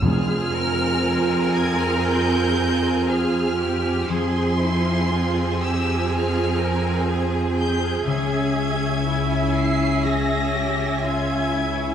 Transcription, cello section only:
X:1
M:4/4
L:1/8
Q:1/4=60
K:Fm
V:1 name="Cello section"
A B4- B A G | A =E F G A B A2- | A2 _F2 A G =F _F |]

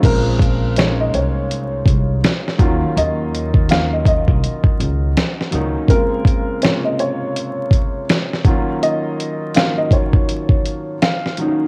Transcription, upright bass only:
X:1
M:4/4
L:1/16
Q:"Swing 16ths" 1/4=82
K:Bbm
V:1 name="Upright bass" clef=bass
B,,,6 C,,4 C,,2 z2 E,, z | E,,6- E,, C,, z2 D,,2 z2 D,, z | z16 | z16 |]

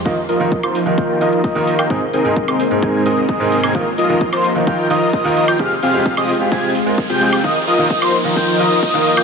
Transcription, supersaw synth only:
X:1
M:4/4
L:1/16
Q:1/4=130
K:Eb
V:1 name="Supersaw synth"
[FBe] z [FBe]3 [FBc] z2 [FBg]2 [FBe]2 [FBe]3 [FBg] | [CEABe] z [CEABe]3 [CEABc] z2 [CEABa]2 [CEABe]2 [CEABe]3 [CEABa] | [FBe] z [FBe]3 [FBc] z2 [FBg]2 [FBe]2 [FBe]3 [FBg] | [CFGAf] z [CFGAf]3 [CFGAe] z2 [CFGAa]2 z3 [CFGAg]3 |
[FBe] z [FBe]3 [FBc] z2 [FBg]2 [FBe]2 [FBe]3 [FBg] |]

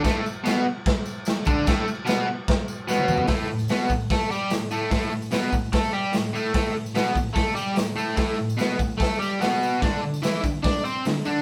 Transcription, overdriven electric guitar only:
X:1
M:4/4
L:1/8
Q:1/4=147
K:Glyd
V:1 name="Overdriven electric guitar" clef=bass
[A,,A,] z [B,,B,] z4 [D,D] | [A,,A,] z [B,,B,] z3 [B,,B,]2 | [A,,A,] A,, [B,,B,] A,, [A,A] [G,G] A,, [A,,A,] | [A,,A,] A,, [B,,B,] A,, [A,A] [G,G] A,, [A,,A,] |
[A,,A,] A,, [B,,B,] A,, [A,A] [G,G] A,, [A,,A,] | [A,,A,] A,, [B,,B,] A,, [A,A] [G,G] [B,,B,]2 | [D,D] D, [E,E] D, [Dd] [=C=c] D, [D,D] |]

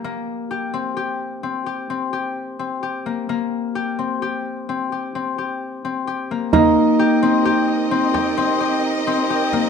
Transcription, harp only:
X:1
M:7/4
L:1/8
Q:1/4=130
K:Cm
V:1 name="Harp"
B,2 G C G2 C G C G2 C G B, | B,2 G C G2 C G C G2 C G B, | B,2 G C G2 C G C G2 C G B, |]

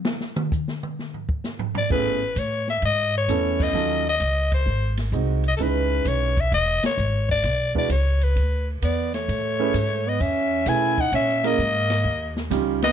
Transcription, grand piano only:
X:1
M:4/4
L:1/8
Q:"Swing" 1/4=130
K:Dmix
V:1 name="Grand piano"
z8 | [K:Alyd] [A,B,CEG] z4 z [A,B,CEA]2 | [F,CD^EA] z4 z [G,^B,DFd] z | [G,CDEB]3 z4 z |
z [G,=DEFB] z6 | z [A,CEGB] z4 [A,CEGB] z | z [^A,CEG^A] z4 [=G,CD^E=G] z |]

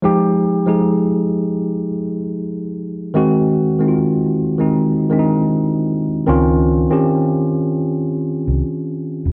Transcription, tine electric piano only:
X:1
M:4/4
L:1/16
Q:"Swing 16ths" 1/4=77
K:Fm
V:1 name="Tine electric piano"
[F,A,EG]2 z [F,A,EA]6 z6 z | [E,A,C_G]2 z [E,A,CEF]3 z [E,A,CE]2 z [E,A,C=DE]4- [E,A,CDE] z | [E,CDF]2 z [E,CDG]6 z6 z |]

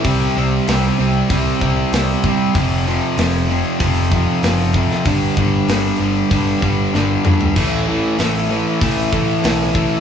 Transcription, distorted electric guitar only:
X:1
M:4/4
L:1/8
Q:1/4=96
K:Am
V:1 name="Distorted electric guitar" clef=bass
[C,G,C] [C,G,C] [C,G,C] [C,G,C] [C,G,C] [C,G,C] [C,G,C] [C,G,C] | [F,,C,F,] [F,,C,F,] [F,,C,F,] [F,,C,F,] [F,,C,F,] [F,,C,F,] [F,,C,F,] [F,,C,F,] | [G,,D,G,] [G,,D,G,] [G,,D,G,] [G,,D,G,] [G,,D,G,] [G,,D,G,] [G,,D,G,] [G,,D,G,] | [A,,E,A,] [A,,E,A,] [A,,E,A,] [A,,E,A,] [A,,E,A,] [A,,E,A,] [A,,E,A,] [A,,E,A,] |]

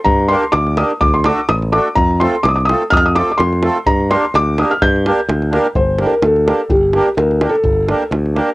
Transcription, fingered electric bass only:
X:1
M:2/4
L:1/8
Q:"Swing 16ths" 1/4=127
K:Gm
V:1 name="Fingered electric bass" clef=bass
G,,2 D,,2 | D,,2 A,,,2 | F,,2 C,,2 | F,,2 F,,2 |
G,,2 D,,2 | G,,2 D,,2 | G,,,2 D,,2 | G,,,2 D,,2 |
G,,,2 D,,2 |]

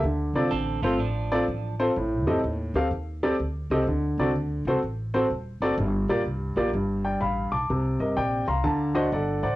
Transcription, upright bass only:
X:1
M:4/4
L:1/8
Q:"Swing" 1/4=126
K:Dphr
V:1 name="Upright bass" clef=bass
D,, C,, A,,, G,,, A,,,2 A,,,2 | A,,, F,, E,, D,, E,,2 D,, C,, | D,, C,, D,, C,, A,,,2 E,,, ^F,,, | G,,, B,,, C,, B,,, G,,,2 A,,, =B,,, |
C,, G,,, B,,, C,, D,,2 G,,, A,,, |]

